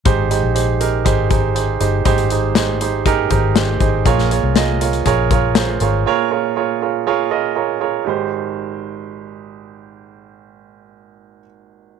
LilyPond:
<<
  \new Staff \with { instrumentName = "Grand piano" } { \time 4/4 \key aes \major \tempo 4 = 120 <ees' g' aes' c''>8 <ees' g' aes' c''>8 <ees' g' aes' c''>8 <ees' g' aes' bes'>8 <ees' g' aes' c''>8 <ees' g' aes' c''>8 <ees' g' aes' c''>8 <ees' g' aes' c''>8 | <ees' g' aes' c''>8 <ees' g' aes' c''>8 <ees' g' aes' c''>8 <ees' g' aes' c''>8 <ees' g' aes' bes'>8 <ees' g' aes' bes'>8 <ees' g' aes' c''>8 <ees' g' aes' c''>8 | <f' aes' bes' des''>8 <f' aes' bes' des''>8 <f' aes' bes' ees''>8 <f' aes' bes' des''>8 <f' aes' bes' des''>8 <f' aes' bes' des''>8 <f' aes' bes' c''>8 <f' aes' bes' des''>8 | <f' aes' bes' des''>8 <f' aes' bes' des''>8 <f' aes' bes' des''>8 <f' aes' bes' des''>8 <f' aes' bes' des''>8 <f' aes' bes' ees''>8 <f' aes' bes' des''>8 <f' aes' bes' des''>8 |
<ees' g' aes' c''>1~ | <ees' g' aes' c''>1 | }
  \new Staff \with { instrumentName = "Grand piano" } { \clef bass \time 4/4 \key aes \major aes,4. r2 r8 | aes,4. r4 c''8 g''4 | bes,4. r2 r8 | bes,4. r4. bes''4 |
aes,,1~ | aes,,1 | }
  \new Staff \with { instrumentName = "Fingered electric bass" } { \clef bass \time 4/4 \key aes \major aes,,8. bes,,4~ bes,,16 aes,,4. g,,8 | aes,,2~ aes,,8 aes,,4 aes,,8 | bes,,8. c,4~ c,16 bes,,4. aes,,8 | r1 |
r1 | r1 | }
  \new DrumStaff \with { instrumentName = "Drums" } \drummode { \time 4/4 <hh bd>8 hh8 hh8 hh8 <hh bd>8 <hh bd>8 hh8 hh8 | <hh bd>16 hh16 hh8 <hh sn>8 hh8 <hh bd>8 <hh bd>8 <hh sn>8 <hh bd>8 | <hh bd>16 sn16 hh8 <hh sn>8 hh16 hh16 <hh bd>8 <hh bd>8 <hh sn>8 hh8 | r4 r4 r4 r4 |
r4 r4 r4 r4 | r4 r4 r4 r4 | }
>>